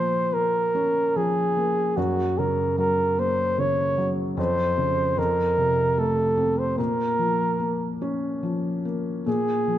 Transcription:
0.00 1.93 A#2 medium
0.00 1.15 F3 soft
0.00 0.35 C5 loud
0.33 1.55 A#3 soft
0.33 1.18 A#4 medium
0.75 1.93 C#4 soft
1.16 1.95 F3 soft
1.16 1.98 G#4 medium
1.57 1.96 A#3 soft
1.97 4.34 F#2 medium
1.97 2.40 F#4 medium
2.38 3.56 C#3 soft
2.38 2.78 A#4 medium
2.78 3.96 F#3 soft
2.78 3.21 A#4 medium
3.19 4.35 A#3 medium
3.19 3.62 C5 medium
3.58 4.36 C#3 medium
3.58 4.13 C#5 medium
3.98 4.37 F#3 medium
4.37 5.15 F2 medium
4.37 5.21 C5 medium
4.78 5.17 C#3 soft
5.17 6.74 F2 medium
5.17 6.01 A#4 medium
5.58 6.75 C3 soft
5.97 6.76 A3 medium
5.97 6.60 A4 medium
6.37 6.77 C4 soft
6.59 6.78 C5 medium
6.78 9.23 A#2 medium
6.78 7.97 A#4 medium
7.19 8.41 F3 soft
7.60 8.84 A#3 soft
8.01 9.23 C#4 medium
8.43 9.24 F3 soft
8.85 9.26 A#3 soft
9.26 9.78 A#2 medium
9.26 9.78 G#4 medium
9.68 9.78 F3 soft

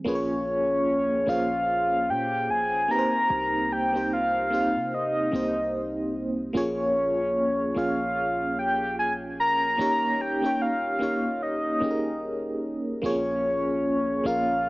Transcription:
0.04 1.23 A#1 loud
0.04 1.14 A#3 loud
0.04 1.15 C#4 medium
0.04 1.15 F4 medium
0.04 1.16 G#4 medium
0.04 1.30 C#5 loud
0.09 0.15 B4 medium
0.15 1.20 C#5 loud
1.26 2.10 A#1 loud
1.26 2.72 A#3 medium
1.26 2.73 C#4 medium
1.26 2.73 F4 medium
1.26 2.74 G#4 medium
1.26 2.11 F5 loud
1.30 2.74 C5 medium
2.09 2.51 A#2 loud
2.09 2.52 G5 loud
2.49 2.87 A#1 loud
2.49 2.92 G#5 loud
2.88 3.79 A#3 medium
2.88 3.79 C4 medium
2.88 3.80 D#4 medium
2.88 3.81 G4 medium
2.88 3.74 A#5 loud
2.92 2.98 B4 medium
2.99 3.84 C5 medium
3.30 4.77 C2 loud
3.72 4.12 G5 loud
3.93 4.45 A#3 medium
3.93 4.45 C4 medium
3.93 4.46 D#4 medium
3.93 4.46 G4 medium
3.97 4.47 C5 medium
4.13 4.96 F5 loud
4.50 5.24 A#3 medium
4.50 5.24 C4 medium
4.50 5.25 D#4 medium
4.50 5.25 G4 medium
4.54 5.26 C5 medium
4.75 5.30 C3 loud
4.94 6.15 D#5 loud
5.31 6.50 C2 loud
5.31 6.41 A#3 medium
5.31 6.42 C4 medium
5.31 6.42 D#4 medium
5.31 6.43 G4 medium
5.36 6.43 C5 medium
6.53 7.72 A#1 loud
6.53 7.63 A#3 loud
6.53 7.63 C#4 medium
6.53 7.64 F4 medium
6.53 7.64 G#4 medium
6.53 7.79 C#5 loud
6.57 7.65 C#5 loud
7.74 9.75 A#1 loud
7.74 9.21 A#3 medium
7.74 9.21 C#4 medium
7.74 9.22 F4 medium
7.74 9.22 G#4 medium
7.74 8.58 F5 loud
7.79 9.23 C#5 medium
8.59 8.96 G5 loud
8.99 9.13 G#5 loud
9.40 10.23 A#5 loud
9.77 11.77 D#1 loud
9.77 10.33 A#3 loud
9.77 10.34 C#4 medium
9.77 10.34 D#4 medium
9.77 10.35 G4 medium
9.81 10.35 C#5 loud
10.21 10.63 G5 loud
10.41 10.93 A#3 medium
10.41 10.94 C#4 medium
10.41 10.94 D#4 medium
10.41 10.95 G4 medium
10.46 10.96 C#5 medium
10.62 11.42 F5 loud
10.99 11.72 A#3 medium
10.99 11.73 C#4 medium
10.99 11.73 D#4 medium
10.99 11.74 G4 medium
11.03 11.75 C#5 medium
11.42 12.59 D#5 loud
11.80 12.99 D#1 loud
11.80 12.90 A#3 medium
11.80 12.90 C#4 medium
11.80 12.91 D#4 medium
11.80 12.91 G4 medium
11.84 11.90 G#4 medium
11.91 12.95 A#4 medium
13.02 14.21 A#1 loud
13.02 14.12 A#3 loud
13.02 13.10 C4 medium
13.02 14.13 F4 medium
13.02 14.13 G#4 medium
13.02 14.28 C#5 loud
13.06 14.15 C#4 medium
13.06 14.14 C#5 loud
14.24 14.69 A#1 loud
14.24 14.69 A#3 medium
14.24 14.69 C#4 medium
14.24 14.69 F4 medium
14.24 14.69 G#4 medium
14.24 14.69 F5 loud
14.28 14.69 A#4 medium

